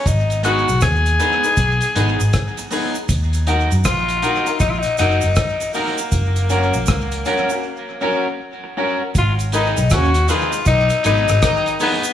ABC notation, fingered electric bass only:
X:1
M:4/4
L:1/16
Q:"Swing 16ths" 1/4=79
K:Abdor
V:1 name="Fingered electric bass" clef=bass
A,,,3 C,, E,,2 z2 C,, z A,,, A,,, z4 | E,,3 G,, B,,,2 z2 B,,, z G,,, G,,, z4 | G,,,3 B,,, D,,2 z8 z2 | A,,,3 C,, E,,2 z2 C,, z A,,, A,,, z4 |]